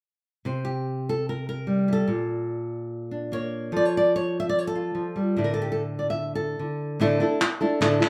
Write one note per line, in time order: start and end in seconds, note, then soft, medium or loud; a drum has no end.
0.45 2.06 C3 medium
0.45 1.09 C5 soft
0.65 1.09 G4 medium
1.09 1.29 A4 medium
1.29 1.48 A#4 medium
1.49 1.92 A#4 medium
1.67 2.08 G3 soft
1.88 2.06 E4 soft
1.88 2.06 G4 soft
1.93 3.05 A4 medium
2.08 3.70 A#2 medium
3.11 3.70 D4 soft
3.32 3.70 A#3 soft
3.32 3.76 C#5 medium
3.72 4.94 F3 medium
3.72 4.67 A4 soft
3.77 3.85 D5 medium
3.85 3.97 C#5 medium
3.97 4.15 D5 medium
4.16 4.39 C#5 medium
4.40 4.49 E5 medium
4.49 4.59 D5 medium
4.59 4.67 C#5 medium
4.67 5.36 A4 medium
4.75 5.34 F4 soft
4.95 5.16 F3 soft
5.16 5.36 G3 medium
5.37 6.59 A2 medium
5.37 6.58 D3 soft
5.37 6.99 E4 soft
5.37 5.53 D5 soft
5.44 5.53 A#4 medium
5.54 5.63 A4 medium
5.62 5.71 G4 medium
5.72 5.81 A4 medium
5.99 6.10 D5 soft
6.10 6.35 E5 medium
6.35 6.92 A4 medium
6.59 6.99 D3 soft
7.00 7.19 A2 medium
7.00 7.20 D3 medium
7.00 7.20 A3 medium
7.00 7.20 D4 medium
7.00 7.19 E4 medium
7.00 7.19 A4 medium
7.20 7.40 A3 medium
7.20 7.41 D4 medium
7.20 7.40 E4 medium
7.20 7.40 A4 medium
7.41 muted nylon-string guitar stroke medium
7.41 clap medium
7.61 7.80 A3 medium
7.61 7.81 D4 medium
7.61 7.81 E4 medium
7.61 7.81 A4 medium
7.81 8.01 A2 medium
7.81 8.01 D3 medium
7.81 8.01 A3 medium
7.81 8.00 D4 medium
7.81 7.99 E4 medium
7.81 7.99 A4 medium
7.81 clap medium
8.00 8.09 A3 soft
8.00 8.09 D4 soft
8.00 8.09 E4 soft
8.00 8.09 A4 medium
8.00 clap medium